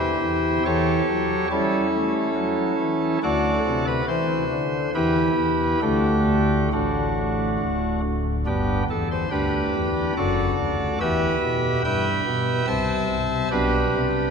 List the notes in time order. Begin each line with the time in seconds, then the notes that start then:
Already playing: E2 E3 E4 G4 C5
0.22 E2
0.65 E2 E3 G4 A4 C#5
1.09 F#3
1.51 G3 C#4 E4 A4
1.93 A3
2.35 F#3
2.81 E3
3.23 D2 D3 F#4 A4 D5
3.66 C3
3.87 B4
4.08 E3 C5
4.52 D3
4.95 E2 E3 E4 G4 B4
5.38 E2
5.82 D2 D3 A3 D4 G4
6.73 A1 A2 A3 D4 F#4
7.59 D1 D2
8.46 G1 G2 B3 D4 G4
8.90 E2 A4
9.11 C5
9.31 D2 D4 G4 B4
9.75 E2
10.17 F#1 F#2 F#4 A4 D5
10.59 D2
11.00 E2 E3 G4 B4 E5
11.43 B2
11.85 G2 B4 E5 G5
12.26 B2
12.67 C2 C3 C5 E5 A5
13.09 C2
13.51 B1 B2 D4 G4 B4
13.95 C3